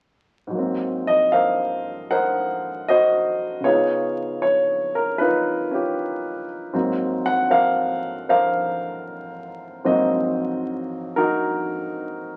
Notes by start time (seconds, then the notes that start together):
0.47 G#2 F#3
0.54 A#3
0.58 C4
1.07 D#5
1.32 A#4 C5 F5
2.11 A#4 C5 F#5
2.88 F#4 C5 D#5
3.60 C#3 B3 C#5
3.65 D#4 F4 G#4
3.72 F4
4.42 C#5
4.95 A#4
5.18 D#4 F4 B4
5.71 C#4 F4 G4
6.73 G#2 F#3 A#3 C4
7.26 F#5
7.50 A#4 C5 F5
8.29 A#4 C5 F5
9.85 G#2 F#3 A#3 C4 F#4 C5 D#5
11.16 D#4 F#4 A#4